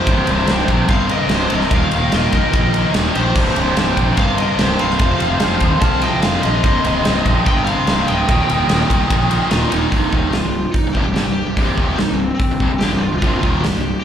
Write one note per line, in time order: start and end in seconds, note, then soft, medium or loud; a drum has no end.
0.00 1.69 C4 medium
0.00 0.87 G4 medium
0.00 6.61 G4 medium
0.00 0.93 C5 medium
0.07 0.20 C1 loud
0.07 0.29 C2 medium
0.07 0.29 G2 loud
0.07 1.71 D5 medium
0.07 kick loud
0.07 ride loud
0.11 0.30 C3 loud
0.27 0.42 C1 medium
0.27 0.49 C2 medium
0.27 0.49 G2 medium
0.27 0.50 C3 medium
0.27 ride medium
0.47 0.62 C1 medium
0.47 0.69 C2 medium
0.47 0.70 G2 loud
0.47 snare loud
0.47 ride loud
0.52 0.71 C3 loud
0.68 0.82 A#1 medium
0.68 0.90 C2 medium
0.68 0.90 G2 medium
0.68 0.91 C3 medium
0.68 kick medium
0.68 ride medium
0.89 1.15 G1 medium
0.89 1.10 C2 loud
0.89 1.11 G2 loud
0.89 1.11 C3 loud
0.89 1.09 C5 medium
0.89 1.11 F5 medium
0.89 kick loud
0.89 ride loud
1.09 1.31 C2 medium
1.09 1.32 G2 loud
1.09 1.32 C3 medium
1.09 1.30 A#4 medium
1.09 1.32 D#5 medium
1.09 ride medium
1.29 1.44 C1 medium
1.29 1.51 C2 medium
1.29 1.50 G4 medium
1.29 snare loud
1.29 ride medium
1.33 1.52 G2 medium
1.33 1.52 C3 medium
1.33 1.53 C5 medium
1.50 1.65 C1 medium
1.50 1.72 C2 medium
1.50 1.72 G2 medium
1.50 1.72 C3 loud
1.50 1.71 A#4 medium
1.50 1.74 D#5 medium
1.50 ride medium
1.61 snare soft
1.71 1.84 D#1 medium
1.71 1.92 D#2 medium
1.71 1.93 A#2 loud
1.71 1.93 D#3 loud
1.71 3.35 D#4 medium
1.71 2.11 A#4 medium
1.71 3.35 A#4 medium
1.71 2.14 F5 medium
1.71 kick loud
1.71 ride loud
1.92 2.06 D#1 medium
1.92 2.13 D#2 medium
1.92 2.13 A#2 medium
1.92 2.13 D#3 loud
1.92 ride medium
2.12 2.26 D#1 medium
2.12 2.32 D#2 medium
2.12 2.33 A#2 medium
2.12 2.34 D#3 loud
2.12 2.32 A#4 medium
2.12 2.33 D#5 loud
2.12 snare loud
2.12 ride loud
2.33 2.46 C2 medium
2.33 2.53 D#2 medium
2.33 2.54 A#2 medium
2.33 2.54 D#3 medium
2.33 2.91 A#4 medium
2.33 2.92 D#5 loud
2.33 kick medium
2.33 ride medium
2.53 2.80 A#1 medium
2.53 2.75 D#2 medium
2.53 2.76 A#2 loud
2.53 2.76 D#3 loud
2.53 kick loud
2.53 ride loud
2.74 2.95 D#2 medium
2.74 2.96 A#2 medium
2.74 2.96 D#3 loud
2.74 ride medium
2.94 3.09 D#1 medium
2.94 3.16 D#2 medium
2.94 3.16 A#2 medium
2.94 3.17 D#3 medium
2.94 snare loud
2.94 ride loud
3.15 3.29 A#1 medium
3.15 3.36 D#2 medium
3.15 3.36 A#2 medium
3.15 3.36 D#3 loud
3.15 4.14 G4 medium
3.15 4.22 C5 medium
3.15 ride medium
3.36 3.49 C1 loud
3.36 3.56 C2 loud
3.36 3.57 G2 loud
3.36 3.57 C3 medium
3.36 8.25 C4 medium
3.36 4.99 D5 medium
3.36 kick loud
3.36 crash loud
3.56 3.70 C1 medium
3.56 3.77 C2 medium
3.56 3.78 G2 medium
3.56 3.79 C3 loud
3.56 ride medium
3.77 3.91 C1 medium
3.77 3.98 C2 medium
3.77 3.99 G2 medium
3.77 3.99 C3 medium
3.77 snare loud
3.77 ride loud
3.97 4.11 A#1 medium
3.97 4.19 C2 medium
3.97 4.19 G2 medium
3.97 4.20 C3 loud
3.97 kick medium
3.97 ride medium
4.17 4.44 G1 medium
4.17 4.38 C2 loud
4.17 4.39 G2 medium
4.17 4.37 C5 medium
4.17 4.37 F5 loud
4.17 kick loud
4.17 ride loud
4.21 4.39 C3 loud
4.38 4.60 C2 medium
4.38 4.60 G2 medium
4.38 4.61 C3 medium
4.38 4.58 A#4 medium
4.38 4.58 D#5 medium
4.38 ride medium
4.59 4.73 C1 loud
4.59 4.80 C2 medium
4.59 4.80 G2 medium
4.59 4.81 C3 medium
4.59 4.78 G4 medium
4.59 4.81 C5 medium
4.59 snare loud
4.59 ride loud
4.79 4.94 C1 medium
4.79 5.00 C2 medium
4.79 5.00 G2 medium
4.79 5.00 C3 medium
4.79 5.79 C5 medium
4.79 5.79 F5 loud
4.79 ride medium
4.90 snare soft
4.99 5.13 F1 loud
4.99 5.21 F2 loud
4.99 5.21 C3 medium
4.99 6.63 F3 medium
4.99 5.22 F3 loud
4.99 kick loud
4.99 ride loud
5.20 5.34 F1 medium
5.20 5.41 F2 medium
5.20 5.41 C3 medium
5.20 5.42 F3 medium
5.20 ride medium
5.40 5.55 F1 medium
5.40 5.62 F2 medium
5.40 5.62 C3 medium
5.40 5.63 F3 loud
5.40 snare loud
5.40 ride loud
5.60 5.74 D#2 medium
5.60 5.82 F2 medium
5.60 5.82 C3 medium
5.60 5.83 F3 medium
5.60 kick medium
5.60 ride medium
5.81 6.08 C2 medium
5.81 6.02 F2 loud
5.81 6.02 C3 loud
5.81 6.03 F3 loud
5.81 6.02 F5 medium
5.81 6.03 A5 loud
5.81 kick loud
5.81 ride loud
6.02 6.23 F2 medium
6.02 6.23 C3 medium
6.02 6.23 F3 medium
6.02 6.22 D#5 medium
6.02 6.22 G5 loud
6.02 ride medium
6.22 6.37 F1 medium
6.22 6.44 F2 medium
6.22 6.44 C3 loud
6.22 6.44 F3 loud
6.22 6.42 C5 medium
6.22 6.42 F5 loud
6.22 snare loud
6.22 ride loud
6.42 6.57 A#1 medium
6.42 6.64 F2 loud
6.42 6.64 C3 medium
6.42 6.64 F3 loud
6.42 7.43 C5 medium
6.42 7.41 D#5 loud
6.42 ride medium
6.64 6.77 C1 loud
6.64 6.84 C2 loud
6.64 6.85 G2 loud
6.64 6.85 C3 loud
6.64 9.90 G4 medium
6.64 8.28 D#5 medium
6.64 kick loud
6.64 ride loud
6.85 6.98 C1 medium
6.85 7.05 C2 medium
6.85 7.06 G2 medium
6.85 7.06 C3 medium
6.85 ride medium
7.05 7.19 C1 medium
7.05 7.25 C2 loud
7.05 7.26 G2 medium
7.05 7.27 C3 loud
7.05 snare loud
7.05 ride loud
7.26 7.39 A#1 medium
7.26 7.46 C2 medium
7.26 7.46 G2 loud
7.26 7.47 C3 medium
7.26 kick medium
7.26 ride medium
7.46 7.72 G1 medium
7.46 7.67 C2 loud
7.46 7.68 G2 loud
7.46 7.69 C3 loud
7.46 7.66 D#5 medium
7.46 7.64 G5 loud
7.46 kick loud
7.46 ride medium
7.64 8.05 C5 medium
7.64 8.07 F5 loud
7.64 ride medium
7.69 7.87 C2 medium
7.69 7.87 G2 medium
7.69 7.88 C3 loud
7.87 8.01 C1 loud
7.87 8.08 C2 medium
7.87 8.09 G2 medium
7.87 8.09 C3 medium
7.87 snare loud
7.87 ride loud
8.07 8.22 D1 medium
8.07 8.28 C2 medium
8.07 8.28 G2 medium
8.07 8.29 C3 loud
8.07 9.48 D#5 medium
8.07 9.47 G5 loud
8.07 ride medium
8.27 8.42 D#1 loud
8.27 8.49 D#2 medium
8.27 8.50 A#2 loud
8.27 8.49 D#3 medium
8.27 9.91 D#4 medium
8.27 9.91 A#4 medium
8.27 kick loud
8.27 ride medium
8.50 8.63 D#1 medium
8.50 8.69 D#2 medium
8.50 8.70 A#2 medium
8.50 8.70 D#3 medium
8.50 ride medium
8.69 8.83 D#1 loud
8.69 8.89 D#2 medium
8.69 8.90 A#2 loud
8.69 8.90 D#3 medium
8.69 snare loud
8.69 ride loud
8.90 9.03 C2 medium
8.90 9.10 D#2 medium
8.90 9.10 A#2 medium
8.90 9.10 D#3 medium
8.90 kick medium
8.90 ride medium
9.10 9.37 A#1 loud
9.10 9.30 D#2 loud
9.10 9.30 A#2 medium
9.10 9.31 D#3 medium
9.10 kick loud
9.10 ride loud
9.31 9.50 D#2 medium
9.31 9.51 A#2 medium
9.31 9.51 D#3 loud
9.31 ride medium
9.51 9.65 D#1 loud
9.51 9.71 D#2 medium
9.51 9.72 A#2 medium
9.51 9.72 D#3 medium
9.51 9.69 F4 medium
9.51 snare loud
9.51 ride loud
9.70 9.85 D#1 medium
9.70 9.92 D#2 medium
9.70 9.92 A#2 medium
9.70 9.92 D#3 medium
9.70 9.89 D#4 medium
9.70 ride medium
9.90 10.12 C1 medium
9.90 10.13 C2 medium
9.90 10.13 G2 medium
9.90 10.14 C3 medium
9.90 14.04 C4 medium
9.90 10.30 D#4 medium
9.90 14.04 G4 medium
9.90 14.04 D5 medium
9.90 kick loud
9.90 open hi-hat soft
10.13 10.32 D#1 medium
10.13 10.34 D#2 medium
10.13 10.34 A#2 medium
10.13 10.34 D#3 medium
10.13 kick medium
10.32 10.44 C1 medium
10.32 10.44 C2 medium
10.32 10.45 G2 medium
10.32 10.71 F4 medium
10.32 snare loud
10.32 open hi-hat soft
10.45 10.64 C1 medium
10.45 10.61 C2 medium
10.45 10.62 G2 medium
10.72 10.93 D#4 medium
10.72 kick medium
10.72 open hi-hat soft
10.87 10.95 C1 medium
10.87 10.94 C2 medium
10.87 10.95 G2 medium
10.93 11.05 C1 medium
10.93 11.04 C2 medium
10.93 11.05 G2 medium
10.93 11.32 G4 medium
10.93 kick medium
11.06 11.16 C1 medium
11.06 11.15 C2 medium
11.06 11.14 G2 medium
11.16 11.26 G1 medium
11.16 11.25 G2 medium
11.16 11.26 D3 medium
11.16 snare medium
11.16 open hi-hat soft
11.26 11.46 C1 medium
11.26 11.43 C2 medium
11.26 11.43 G2 medium
11.33 11.99 G4 medium
11.47 11.57 C1 medium
11.47 11.57 C2 medium
11.47 11.57 G2 medium
11.57 11.77 C1 medium
11.57 11.77 C2 medium
11.57 11.77 G2 medium
11.57 11.78 C3 medium
11.57 kick loud
11.57 open hi-hat soft
11.77 11.97 D#1 medium
11.77 11.98 D#2 medium
11.77 11.98 A#2 medium
11.77 11.98 D#3 medium
11.77 kick medium
11.96 12.08 C2 medium
11.96 12.08 G2 medium
11.96 12.19 D#4 medium
11.96 snare loud
11.96 open hi-hat soft
12.00 12.09 C1 medium
12.09 12.29 C1 medium
12.09 12.26 C2 medium
12.09 12.26 G2 medium
12.14 12.33 C4 medium
12.35 12.76 C4 medium
12.40 kick loud
12.40 open hi-hat soft
12.51 12.60 C1 medium
12.51 12.60 C2 medium
12.51 12.60 G2 medium
12.60 12.71 C1 medium
12.60 12.70 C2 medium
12.60 12.71 G2 medium
12.60 kick medium
12.71 12.81 C1 medium
12.71 12.82 C2 medium
12.71 12.81 G2 medium
12.78 12.92 G2 medium
12.78 13.01 G4 medium
12.78 snare medium
12.78 open hi-hat soft
12.82 12.92 G1 medium
12.82 12.92 D3 medium
12.92 13.11 C1 medium
12.92 13.09 C2 medium
12.92 13.09 G2 medium
12.97 13.17 F4 medium
13.12 13.22 C1 medium
13.12 13.21 C2 medium
13.12 13.22 G2 medium
13.18 13.37 F4 medium
13.18 open hi-hat soft
13.22 13.42 C1 medium
13.22 13.43 C2 medium
13.22 13.43 G2 medium
13.22 13.44 C3 medium
13.22 kick loud
13.38 13.60 F4 medium
13.43 13.63 D#1 medium
13.43 13.64 D#2 medium
13.43 13.64 A#2 medium
13.43 13.64 D#3 medium
13.43 kick medium
13.60 13.99 G4 medium
13.64 13.74 C1 medium
13.64 13.74 C2 medium
13.64 13.75 G2 medium
13.64 snare loud
13.64 open hi-hat soft
13.75 13.94 C1 medium
13.75 13.91 C2 medium
13.75 13.92 G2 medium
14.00 14.04 G4 medium